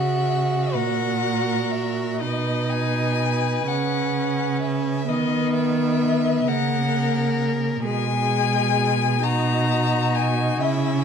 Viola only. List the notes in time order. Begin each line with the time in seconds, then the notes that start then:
Already playing: F#4
2.21 D#4
3.68 C#4
5.10 B3
6.48 A#3
7.85 G#3
9.23 D#4
10.62 C#4